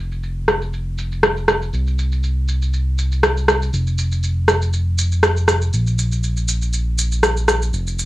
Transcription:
Already playing: F1
0.12 shaker
0.23 shaker
0.48 cross-stick, shaker
0.62 shaker
0.73 shaker
0.98 shaker
1.12 shaker
1.23 cross-stick, shaker
1.37 shaker
1.48 cross-stick, shaker
1.62 shaker
1.73 C2, shaker
1.87 shaker
1.99 shaker
2.12 shaker
2.23 shaker
2.48 shaker
2.62 shaker
2.73 shaker
2.98 shaker
3.12 shaker
3.23 cross-stick, shaker
3.37 shaker
3.48 cross-stick, shaker
3.62 shaker
3.73 F1, shaker
3.87 shaker
3.98 shaker
4.12 shaker
4.24 shaker
4.48 cross-stick, shaker
4.62 shaker
4.73 shaker
4.98 shaker
5.12 shaker
5.23 cross-stick, shaker
5.37 shaker
5.48 cross-stick, shaker
5.62 shaker
5.73 A#1, shaker
5.87 shaker
5.98 shaker
6.12 shaker
6.23 shaker
6.37 shaker
6.48 shaker
6.62 shaker
6.73 shaker
6.98 shaker
7.12 shaker
7.23 cross-stick, shaker
7.37 shaker
7.48 cross-stick, shaker
7.62 shaker
7.73 F1, shaker
7.87 shaker
7.99 shaker

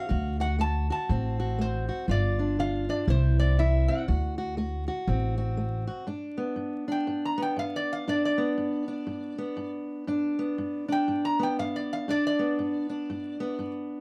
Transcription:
Already playing: F5
0.09 D2 D3 F#4
0.40 F#4 F#5
0.59 A3 F#4 A5
0.90 F#4 A5
1.09 A1 A2 C4
1.40 F#4
1.58 A3 C5
1.89 F#4
2.08 G1 G2 F4 D5
2.39 D4
2.59 D3 F4 F5
2.89 D4 D5
3.08 C2 C3 E4 C5
3.39 C4 D5
3.59 E3 E4 E5
3.88 C4 F#5
4.08 D2 D3 F#4
4.38 F#4
4.57 A3 F#4
4.88 F#4
5.08 A1 A2 C4
5.38 F#4
5.57 A3
5.87 F#4
6.07 G2 D4
6.37 B3
6.56 G2
6.88 D4 G5
7.07 G2
7.25 A#5
7.38 B3
7.42 G5
7.57 G2 F5
7.76 D5
7.93 F5
8.07 G2 D4 D5
8.25 D5
8.38 B3
8.58 G2
8.88 D4
9.07 G2
9.38 B3
9.57 G2
10.07 G2 D4
10.39 B3
10.58 G2
10.88 D4 G5
11.08 G2
11.25 A#5
11.39 B3 G5
11.59 G2 F5
11.76 D5
11.93 F5
12.08 G2 D4 D5
12.27 D5
12.39 B3
12.59 G2
12.89 D4
13.10 G2
13.40 B3
13.59 G2

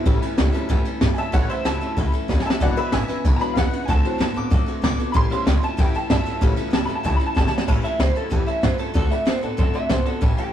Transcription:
Already playing: E4
0.05 A1 A2 E3 G3 B3 C#4 E4 A4, kick, ride
0.22 G3 C#4 E4 A4, muted upright bass stroke, snare, ride
0.37 C#2 A2 F#3 G3 C#4 E4 A4, snare, ride
0.52 A2 F#3 G3 B3 C#4 E4 A4, snare, ride
0.69 E2 A2 E3 G3 C#4 E4 A4, kick, ride
0.85 G3 C#4 E4 A4, muted upright bass stroke, ride
1.01 G2 A2 F#3 G3 C#4 E4 A4, kick, snare, ride
1.14 A2 E4 A4 E5 G#5, muted upright bass stroke, ride
1.19 F#3 G3 C#4 A5
1.32 A1 A2 E3 G3 B3 C#4 E4 A4 C#5 F#5, kick, ride
1.49 G3 C#4 E4 A4 C5 E5, muted upright bass stroke, ride
1.65 C#2 A2 F#3 G3 C#4 E4 A4 E5 A5, snare, ride
1.81 A2 F#3 G3 C#4 E4 A4, ride
1.97 C#2 A2 E3 G3 C#4 E4 A4, kick, ride
2.12 G3 C#4 E4 A4, muted upright bass stroke, ride
2.28 D#2 A2 F#3 G3 C#4 E4 A4, kick, snare
2.40 G#5, snare
2.45 A2 F#3 G3 C#4 E4 A4 E5 A5, muted upright bass stroke
2.50 snare
2.60 E1 E2 B2 E3 F#3 G#3 D4 E4 B4 D5 F#5, kick, ride
2.76 D4 E4 B4 E5, muted upright bass stroke, ride
2.92 G#1 E2 C#3 G#3 D4 E4 B4 E5 G#5, snare, ride
3.08 E2 C#3 D4 E4 B4, muted upright bass stroke, snare, ride
3.25 B1 E2 B2 E3 G#3 D4 E4 B4, kick, ride
3.36 F#3 G#3 B4 A#5
3.41 D4 E4 B5, ride
3.54 E2 C#3 G#3 D4 E4 B4 F5, kick, snare, ride
3.59 F#5
3.71 E2 C#3 D4 E4 B4, muted upright bass stroke, ride
3.85 D2 D3 A3 C4 F#4 A4 G#5, kick, ride
3.90 A5
4.03 E3 F#3 C4 F#4 A4, muted upright bass stroke, ride
4.18 F#2 D3 A3 B3 C4 F#4 A4 A5, snare, ride
4.34 A2 D3 B3 C4 F#4 A4 D6, ride
4.50 F#2 D3 A3 C4 F#4 A4, kick, snare, ride
4.66 C4 F#4 A4, muted upright bass stroke, ride
4.82 C2 D3 A3 B3 C4 F#4 A4 D6, kick, snare, ride
4.98 D3 B3 C4 F#4 A4, muted upright bass stroke, ride
5.12 A1 A2 E3 G3 C#4 E4 A4 B5, kick, ride
5.16 C6
5.29 C#3 G3 B3 C#4 E4 A4, muted upright bass stroke, snare, ride
5.46 C#2 A2 F#3 G3 C#4 E4 A4, snare, ride
5.62 A2 F#3 G3 C#4 E4 A4 A5, muted upright bass stroke, ride
5.77 E2 A2 E3 G3 C#4 E4 A4 G5, kick, ride
5.94 G3 C#4 E4 A4 A5, muted upright bass stroke, ride
6.10 G2 A2 F#3 G3 C#4 E4 A4 E5 A5, kick, snare, ride
6.25 A2 F#3 G3 C#4 E4 A4, muted upright bass stroke, ride
6.41 A1 A2 C#3 E3 G3 B3 C#4 E4 A4, kick, ride
6.56 G3 C#4 E4 A4, muted upright bass stroke, ride
6.71 C#2 A2 F#3 G3 C#4 E4 A4 A5, snare, ride
6.85 E2 C#4 E4 A4 B5, ride
6.90 A2 F#3 G3
6.95 A5
7.03 C#2 A2 E3 G3 C#4 E4 A4 A5, kick, ride
7.16 A4 B5
7.20 G3 C#4 E4, muted upright bass stroke, ride
7.26 A5
7.35 G1 A2 F#3 G3 C#4 E4 A4 A5, kick, snare
7.47 A4 A5, snare
7.52 A2 F#3 G3 C#4 E4, muted upright bass stroke
7.58 snare
7.68 A1 A2 E3 G3 C#4 E4 A4 C#5 E5 A5, kick, crash
7.82 G3 C#4 E4 A4 C#5 E5 A5, muted upright bass stroke, snare, ride
7.99 C#2 A2 F#3 G3 C#4 E4 A4 C5 C#5 E5 B5, snare, ride
8.15 A2 F#3 G3 C#4 E4 A4 C#5 E5 A5, ride
8.30 E2 A2 E3 G3 C#4 E4 G4 A4 C#5 E5 A5, kick, ride
8.46 G3 C#4 E4 A4 C#5 E5 A5, muted upright bass stroke, ride
8.61 G2 A2 F#3 G3 C#4 E4 A4 C5 C#5 E5 F#5, kick, snare, ride
8.78 A2 F#3 G3 C#4 E4 A4 C#5 E5 A5, muted upright bass stroke, ride
8.94 D2 D3 A3 C4 F#4 A4 D5 F#5 A5, kick, ride
9.09 C4 F#4 A4 D5 E5 F#5 B5, snare, ride
9.25 F#2 D3 A3 B3 C4 F#4 A4 C5 D5 F#5 A5, snare, ride
9.41 A2 D3 B3 C4 F#4 A4 D5 F#5 A5, ride
9.57 F#2 D3 A3 C4 F#4 A4 D5 F#5 C6, kick, ride
9.73 C4 F#4 A4 D5 E5 F#5 C6, muted upright bass stroke, snare, ride
9.89 C2 D3 A3 B3 C4 F#4 A4 C5 D5 F#5 A5, kick, snare, ride
10.05 D3 B3 C4 F#4 A4 D5 F#5 A5, muted upright bass stroke, ride
10.21 A1 A2 E3 G3 C#4 G4 A4 C#5 E5 A5, kick, ride
10.37 G3 C#4 G4 A4 C#5 E5 A5, muted upright bass stroke, ride

